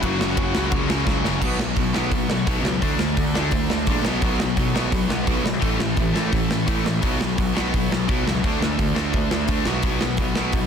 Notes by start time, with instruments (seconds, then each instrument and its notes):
0.01 picked electric bass F#1, overdriven electric guitar F#2 C#3 F#3, lead electric guitar F#4 F#5, kick, ride
0.19 picked electric bass F#1, overdriven electric guitar F#2 C#3 F#3, snare
0.37 picked electric bass F#1, overdriven electric guitar F#2 C#3 F#3, kick, ride
0.55 picked electric bass C#2, overdriven electric guitar F#2 C#3 F#3, snare
0.72 picked electric bass C#2, overdriven electric guitar F#2 C#3 F#3, kick, ride
0.90 overdriven electric guitar F#2 C#3 F#3, snare
1.07 picked electric bass C#2, overdriven electric guitar F#2 C#3 F#3, kick, snare
1.24 picked electric bass F#1, overdriven electric guitar F#2 C#3 F#3, snare
1.41 picked electric bass B1, overdriven electric guitar B2 F#3 B3, kick, crash
1.59 overdriven electric guitar B2 F#3, snare
1.76 picked electric bass B1, overdriven electric guitar B2 F#3, kick, open hi-hat
1.94 overdriven electric guitar B2 F#3 B3, snare
2.11 picked electric bass B1, overdriven electric guitar B2 F#3, kick, open hi-hat
2.28 picked electric bass B1, overdriven electric guitar B2 F#3, snare
2.46 picked electric bass B1, overdriven electric guitar B2 F#3 B3, kick, open hi-hat
2.62 picked electric bass C#2, overdriven electric guitar B2 F#3, snare
2.82 picked electric bass D2, overdriven electric guitar D3 A3 D4, kick, open hi-hat
2.97 picked electric bass D2, overdriven electric guitar D3, snare
3.01 overdriven electric guitar A3
3.17 picked electric bass D2, overdriven electric guitar D3 A3, kick, open hi-hat
3.35 overdriven electric guitar D3 A3 D4, snare
3.51 picked electric bass D2, overdriven electric guitar D3 A3, kick, open hi-hat
3.70 overdriven electric guitar D3 A3, snare
3.87 picked electric bass A#1, overdriven electric guitar D3 A3 D4, kick, open hi-hat
4.03 picked electric bass B1, overdriven electric guitar B2 F#3, snare
4.07 overdriven electric guitar B3
4.22 picked electric bass B1, overdriven electric guitar B2 F#3 B3, kick, open hi-hat
4.40 overdriven electric guitar B2 F#3, snare
4.55 picked electric bass B1, distorted electric guitar B2 B3, kick, open hi-hat
4.59 overdriven electric guitar B2 F#3
4.75 overdriven electric guitar B2 F#3 B3, snare
4.91 picked electric bass B1, overdriven electric guitar B2 F#3, kick, open hi-hat
5.09 picked electric bass B1, overdriven electric guitar B2 F#3, distorted electric guitar B3, snare
5.24 picked electric bass B1, overdriven electric guitar B2 F#3, kick, open hi-hat
5.28 overdriven electric guitar B2 F#3 B3
5.43 picked electric bass B1, overdriven electric guitar B2 F#3, snare
5.59 picked electric bass A1, overdriven electric guitar A2 E3 A3, kick, open hi-hat
5.64 overdriven electric guitar A3
5.79 picked electric bass A1, overdriven electric guitar A2 E3, snare
5.97 picked electric bass A1, overdriven electric guitar A2 E3, kick, open hi-hat
6.13 overdriven electric guitar A2 E3, distorted electric guitar A3, snare
6.18 overdriven electric guitar A3
6.30 picked electric bass A1, overdriven electric guitar A2 E3, kick, open hi-hat
6.34 overdriven electric guitar E3
6.51 overdriven electric guitar A2 E3, snare
6.67 picked electric bass A1, overdriven electric guitar A2 E3 A3, kick, open hi-hat
6.86 overdriven electric guitar A2 E3, snare
7.02 picked electric bass B1, overdriven electric guitar B2 F#3 B3, kick, open hi-hat
7.21 overdriven electric guitar B2 F#3, snare
7.38 picked electric bass B1, overdriven electric guitar B2 F#3, kick, open hi-hat
7.54 overdriven electric guitar B2 F#3, distorted electric guitar B3, snare
7.58 overdriven electric guitar B3
7.74 picked electric bass B1, overdriven electric guitar B2 F#3, kick, open hi-hat
7.91 picked electric bass B1, overdriven electric guitar B2 F#3, snare
8.09 picked electric bass B1, overdriven electric guitar B2 F#3 B3, kick, open hi-hat
8.26 picked electric bass C#2, overdriven electric guitar B2 F#3, snare
8.44 picked electric bass D2, overdriven electric guitar D3 A3 D4, kick, open hi-hat
8.61 picked electric bass D2, overdriven electric guitar D3 A3, snare
8.78 picked electric bass D2, overdriven electric guitar D3 A3, kick, open hi-hat
8.96 overdriven electric guitar D3 A3 D4, snare
9.12 picked electric bass D2, overdriven electric guitar D3, kick, open hi-hat
9.16 overdriven electric guitar D3 A3
9.31 overdriven electric guitar D3 A3, snare
9.48 picked electric bass D2, overdriven electric guitar D3 A3 D4, kick, open hi-hat
9.65 picked electric bass B1, overdriven electric guitar B2 F#3 B3, snare
9.82 picked electric bass B1, overdriven electric guitar B2 F#3 B3, kick, open hi-hat
10.01 overdriven electric guitar B2 F#3, snare
10.17 picked electric bass B1, overdriven electric guitar B2 F#3, distorted electric guitar B3, kick, open hi-hat
10.35 overdriven electric guitar B2 F#3 B3, snare
10.52 picked electric bass B1, overdriven electric guitar B2 F#3, kick, open hi-hat